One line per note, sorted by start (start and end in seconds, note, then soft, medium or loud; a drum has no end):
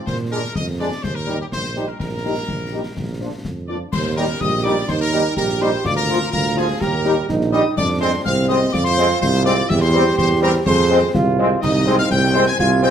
0.06 0.47 A#2 loud
0.06 0.17 C5 loud
0.06 concert bass drum medium
0.06 snare medium
0.06 crash soft
0.31 0.40 G#3 medium
0.31 0.40 A#3 medium
0.31 0.39 D4 medium
0.31 0.41 D4 medium
0.31 0.40 G#4 medium
0.31 0.54 A#4 loud
0.55 0.92 F2 medium
0.55 0.66 D#5 loud
0.55 concert bass drum medium
0.55 snare medium
0.79 0.88 G#3 medium
0.79 0.89 A#3 medium
0.79 0.88 D4 medium
0.79 0.89 D4 medium
0.79 0.89 G#4 medium
0.79 1.02 D5 loud
1.03 1.44 D#2 medium
1.03 1.15 C5 loud
1.03 concert bass drum medium
1.03 snare medium
1.15 1.39 A#4 loud
1.27 1.35 G3 medium
1.27 1.37 A#3 medium
1.27 1.36 D#4 medium
1.27 1.37 D#4 medium
1.27 1.37 G4 medium
1.27 snare medium
1.41 1.46 G4 medium
1.51 1.92 A#1 medium
1.51 1.85 C5 loud
1.51 concert bass drum medium
1.51 snare medium
1.65 snare medium
1.76 1.84 G3 medium
1.76 1.85 A#3 medium
1.76 1.84 D#4 medium
1.76 1.85 D#4 medium
1.76 1.85 G4 medium
1.76 snare medium
1.88 1.98 A#4 medium
1.99 2.40 A#1 medium
1.99 3.40 A#4 loud
1.99 concert bass drum medium
1.99 snare medium
2.25 2.33 G3 medium
2.25 2.33 A#3 medium
2.25 2.33 D#4 medium
2.25 2.33 G4 medium
2.48 2.88 A#1 medium
2.48 concert bass drum medium
2.48 snare medium
2.72 2.81 G3 medium
2.72 2.81 A#3 medium
2.72 2.81 D#4 medium
2.72 2.81 G4 medium
2.96 3.36 A#1 medium
2.96 concert bass drum medium
2.96 snare medium
3.20 3.29 F3 medium
3.20 3.29 A#3 medium
3.20 3.28 D4 medium
3.20 3.29 D4 medium
3.20 3.29 F4 medium
3.44 3.84 F2 medium
3.44 concert bass drum medium
3.44 snare medium
3.67 3.76 F3 medium
3.67 3.77 A#3 medium
3.67 3.77 D4 medium
3.67 3.77 F4 medium
3.67 3.78 D5 medium
3.67 3.74 D6 medium
3.92 4.33 D#2 loud
3.92 4.15 C5 loud
3.92 4.15 C6 loud
3.92 concert bass drum medium
3.92 snare medium
3.92 crash medium
4.16 4.25 G3 loud
4.16 4.26 A#3 medium
4.16 4.25 D#4 loud
4.16 4.25 D#4 medium
4.16 4.25 G4 medium
4.16 4.39 A#4 loud
4.16 4.23 A#5 loud
4.39 4.81 A#1 loud
4.39 4.85 G4 loud
4.39 4.65 D#5 loud
4.39 4.65 D#6 loud
4.39 concert bass drum loud
4.39 snare medium
4.64 4.73 G3 loud
4.64 4.74 A#3 medium
4.64 4.73 D#4 loud
4.64 4.74 D#4 medium
4.64 4.74 G4 medium
4.64 4.89 D5 loud
4.64 4.87 D6 loud
4.88 5.29 D#2 loud
4.88 5.33 D#4 medium
4.88 5.01 C5 loud
4.88 4.93 C6 loud
4.88 concert bass drum medium
4.88 snare medium
5.00 5.34 A#4 loud
5.00 5.34 A#5 loud
5.13 5.21 G3 loud
5.13 5.21 A#3 medium
5.13 5.21 D#4 medium
5.13 5.21 D#4 loud
5.13 5.21 G4 medium
5.13 snare medium
5.37 5.77 A#1 loud
5.37 5.86 G4 loud
5.37 5.59 A#4 loud
5.37 5.43 A#5 loud
5.37 concert bass drum medium
5.37 snare medium
5.49 snare medium
5.61 5.69 G3 loud
5.61 5.70 A#3 medium
5.61 5.69 D#4 loud
5.61 5.70 D#4 medium
5.61 5.70 G4 medium
5.61 5.85 C5 loud
5.61 5.67 C6 loud
5.61 snare medium
5.85 6.25 D2 loud
5.85 6.32 F4 loud
5.85 5.97 D5 loud
5.85 5.96 D6 loud
5.85 concert bass drum medium
5.85 snare medium
5.85 crash soft
5.96 6.30 A#4 loud
5.96 6.30 A#5 loud
6.09 6.18 F3 loud
6.09 6.18 A#3 medium
6.09 6.18 F4 medium
6.32 6.73 D2 loud
6.32 6.78 F4 loud
6.32 6.55 A#4 loud
6.32 6.60 A#5 loud
6.32 concert bass drum medium
6.32 snare medium
6.57 6.66 F3 loud
6.57 6.66 A#3 medium
6.57 6.66 F4 medium
6.57 6.66 F4 loud
6.57 6.79 G#4 loud
6.57 6.81 G#5 loud
6.80 7.21 D#2 loud
6.80 7.26 G4 loud
6.80 7.29 A#4 loud
6.80 7.26 A#5 loud
6.80 concert bass drum loud
6.80 snare medium
7.05 7.14 G3 loud
7.05 7.14 A#3 medium
7.05 7.13 D#4 loud
7.05 7.14 D#4 medium
7.05 7.14 G4 medium
7.05 snare medium
7.29 7.66 A#1 loud
7.29 7.74 D#4 loud
7.29 concert bass drum medium
7.29 snare medium
7.41 snare medium
7.52 7.62 G3 loud
7.52 7.63 A#3 medium
7.52 7.62 D#4 loud
7.52 7.63 D#4 medium
7.52 7.63 G4 medium
7.52 7.63 D#5 loud
7.52 7.75 D#6 loud
7.52 snare medium
7.77 8.18 F2 loud
7.77 8.22 D4 loud
7.77 7.88 D5 loud
7.77 8.00 D6 loud
7.77 concert bass drum loud
7.77 snare medium
7.77 crash soft
8.00 8.09 G#3 loud
8.00 8.11 G#3 loud
8.00 8.10 C4 loud
8.00 8.10 C4 medium
8.00 8.12 C5 loud
8.00 8.10 C5 medium
8.00 8.23 C6 loud
8.25 8.66 C2 loud
8.25 8.70 C4 loud
8.25 8.48 F5 loud
8.25 8.31 F6 loud
8.25 concert bass drum medium
8.25 snare medium
8.48 8.57 G#3 loud
8.48 8.59 G#3 medium
8.48 8.57 C4 loud
8.48 8.59 C4 medium
8.48 8.59 C5 medium
8.48 8.72 D#5 loud
8.48 8.55 D#6 loud
8.72 9.14 F2 loud
8.72 9.72 F4 loud
8.72 8.86 D5 loud
8.72 8.78 D6 loud
8.72 concert bass drum medium
8.72 snare loud
8.84 9.19 C5 loud
8.84 9.18 C6 loud
8.97 9.06 G#3 loud
8.97 9.07 G#3 medium
8.97 9.07 C4 medium
8.97 9.06 C4 loud
8.97 9.06 C5 loud
8.97 snare medium
9.21 9.62 C2 loud
9.21 9.44 C5 loud
9.21 9.27 C6 loud
9.21 concert bass drum loud
9.21 snare loud
9.34 snare medium
9.44 9.53 G#3 loud
9.44 9.55 G#3 medium
9.44 9.54 C4 loud
9.44 9.55 C4 medium
9.44 9.55 C5 medium
9.44 9.68 D5 loud
9.44 9.68 D6 loud
9.44 snare medium
9.69 10.10 E2 loud
9.69 10.66 G4 loud
9.69 9.82 E5 loud
9.69 9.75 E6 loud
9.69 concert bass drum loud
9.69 snare medium
9.69 crash soft
9.81 10.17 C5 loud
9.81 10.15 C6 loud
9.93 10.02 G3 loud
9.93 10.03 G3 loud
9.93 10.03 C4 loud
9.93 10.03 C5 loud
10.17 10.58 E2 loud
10.17 10.29 C5 loud
10.17 10.40 C6 loud
10.17 concert bass drum loud
10.17 snare medium
10.41 10.50 G3 loud
10.41 10.51 G3 medium
10.41 10.50 C4 loud
10.41 10.51 C4 loud
10.41 10.53 A#4 loud
10.41 10.51 C5 medium
10.41 10.49 A#5 loud
10.66 11.06 F2 loud
10.66 11.11 G#4 loud
10.66 11.11 C5 loud
10.66 11.11 C6 loud
10.66 concert bass drum loud
10.66 snare medium
10.90 10.99 G#3 loud
10.90 10.99 C4 loud
10.90 10.99 C5 loud
11.15 11.55 C2 loud
11.15 11.59 F4 loud
11.15 concert bass drum loud
11.15 snare medium
11.38 11.47 G#3 loud
11.38 11.48 G#3 loud
11.38 11.47 C4 loud
11.38 11.47 C5 medium
11.62 12.03 C2 loud
11.62 12.07 D#4 loud
11.62 11.96 D#5 loud
11.62 11.96 D#6 loud
11.62 concert bass drum medium
11.62 snare medium
11.62 crash medium
11.86 11.95 G#3 loud
11.86 11.96 G#3 loud
11.86 11.95 C4 loud
11.86 11.95 C5 loud
11.99 12.10 F5 loud
11.99 12.04 F6 loud
12.11 12.51 C2 loud
12.11 12.46 C4 loud
12.11 12.44 G5 loud
12.11 12.51 G6 loud
12.11 concert bass drum medium
12.11 snare medium
12.34 12.43 G#3 loud
12.34 12.43 C4 medium
12.34 12.43 C4 loud
12.34 12.43 C5 loud
12.47 12.58 G#5 loud
12.47 12.59 G#6 loud
12.59 12.90 C2 loud
12.59 12.90 F4 loud
12.59 12.70 G#5 loud
12.59 12.82 G#6 loud
12.59 concert bass drum loud
12.59 snare medium
12.82 12.90 G#3 loud
12.82 12.90 C4 loud
12.82 12.90 C5 loud
12.82 12.90 G5 loud
12.82 12.90 G6 loud
12.82 snare medium